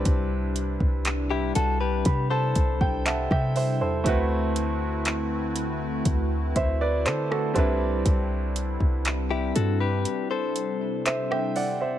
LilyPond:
<<
  \new Staff \with { instrumentName = "Grand piano" } { \time 4/4 \key c \lydian \tempo 4 = 60 << { r4. a''8 b''16 a''8 g''16 <e'' fis'' a''>16 <e'' g''>16 <c'' e''>16 <a' c''>16~ | <a' c''>16 r2 r16 <c'' e''>16 <b' d''>16 <a' c''>16 <fis' a'>8 r16 | r2. <c'' e''>16 <e'' g''>16 <d'' fis''>16 <c'' e''>16 | } \\ { <g c' d' e' b'>2.~ <g c' d' e' b'>8 r8 | <a c' e' fis' b'>2.~ <a c' e' fis' b'>8 <g c' d' e' b'>8~ | <g c' d' e' b'>2.~ <g c' d' e' b'>8 r8 | } >> }
  \new Staff \with { instrumentName = "Clean electric guitar" } { \time 4/4 \key c \lydian r4 r16 <e' g'>16 <fis' a'>16 <g' b'>8 <a' c''>4. r16 | r1 | r4 r16 <e' g'>16 <fis' a'>16 <g' b'>8 <a' c''>4. r16 | }
  \new Staff \with { instrumentName = "Analog synth pad" } { \time 4/4 \key c \lydian <c g d' e'>1 | <d a c' fis' b'>2.~ <d a c' fis' b'>8 <c g c' d'>8~ | <c g c' d'>1 | }
  \new Staff \with { instrumentName = "808-style bass" } { \clef bass \time 4/4 \key c \lydian c,8. c,8. c,8 c8 c,8. c8 e,16 | d,2 d,8 d,8 d8 c,8 | c,8. c,8. g,8 r2 | }
  \new DrumStaff \with { instrumentName = "Drums" } \drummode { \time 4/4 <hh bd>8 hh16 bd16 <hc hh>8 hh8 <hh bd>8 <hh bd>16 bd16 <hc hh>16 <bd ss>16 hho8 | <hh bd>8 hh8 <hc hh>8 hh8 <hh bd>8 <hh bd>8 <hc hh>16 ss16 <hh bd>8 | <hh bd>8 hh16 bd16 <hc hh>8 hh8 hh8 hh8 <hc hh>16 ss16 hho8 | }
>>